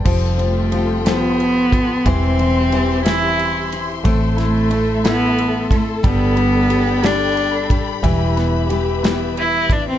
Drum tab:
CC |x-----|------|------|------|
RD |-xxxxx|xxxxxx|xxxxxx|xxxxxx|
SD |---o--|---o--|-o-o--|---o--|
BD |o----o|o-----|o----o|o----o|

CC |------|
RD |xxxxxx|
SD |-o-o--|
BD |o----o|